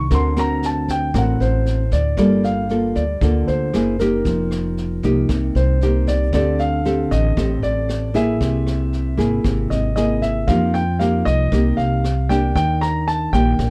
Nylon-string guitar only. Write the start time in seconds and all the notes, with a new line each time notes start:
0.11 D3 C4 F#4 A#4
0.37 C4 F#4 A#4
1.15 A2 C4 F#4 A#4
2.18 G3 A#3 F4 A4
2.70 A#3 F4 A4
3.22 D3 A#3 F4 A4
3.74 A#3 E4 G#4
4.01 A#3 D#4 G4
4.27 F3
5.04 A#3 D#4 G4
5.30 C3
5.82 A#3 D#4 G4
6.34 D3 C4 G4 A4
6.85 C4 G4 A4
7.37 A2 C4 G4 A4
8.14 A#3 E4 G#4
8.41 C3
9.17 A#3 E4 G#4
9.44 C3
9.96 A#3 E4 G#4
10.49 F3 A#3 D#4 G4
11.00 A#3 D#4 G4
11.52 C3 A#3 D#4 G4
12.30 A#3 D4 G4
12.55 D#3
13.34 A#3 D4 G4
13.60 A#2